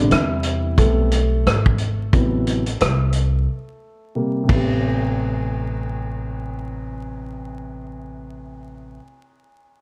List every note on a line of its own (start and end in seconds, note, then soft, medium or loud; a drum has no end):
0.00 0.74 C3 soft
0.00 0.11 D3 medium
0.00 0.75 G3 soft
0.00 0.75 B3 medium
0.00 0.11 D4 medium
0.11 0.75 E2 medium
0.11 0.75 E3 medium
0.11 0.80 E4 medium
0.11 cross-stick loud
0.11 closed hi-hat medium
0.43 closed hi-hat medium
0.78 1.42 B1 medium
0.78 1.09 G3 soft
0.78 4.12 A3 medium
0.78 1.09 B3 medium
0.78 1.09 C4 soft
0.78 4.11 A4 medium
0.78 kick medium
0.78 closed hi-hat medium
1.11 closed hi-hat medium
1.46 2.10 G#1 medium
1.46 cross-stick medium
1.46 closed hi-hat medium
1.66 kick medium
1.78 closed hi-hat medium
2.13 2.77 A1 medium
2.13 2.61 C3 soft
2.13 2.61 E3 soft
2.13 2.61 F#3 soft
2.13 2.61 B3 medium
2.13 kick loud
2.13 closed hi-hat medium
2.47 closed hi-hat medium
2.66 closed hi-hat medium
2.80 3.45 C2 medium
2.80 cross-stick loud
2.80 closed hi-hat medium
3.12 closed hi-hat medium
4.15 4.42 C3 soft
4.15 4.48 G3 soft
4.15 4.48 A#3 soft
4.43 8.96 C3 medium
4.47 8.98 A1 medium
4.47 8.98 A3 medium
4.47 kick medium
4.47 ride medium
4.51 9.00 B3 medium
4.55 9.02 G4 medium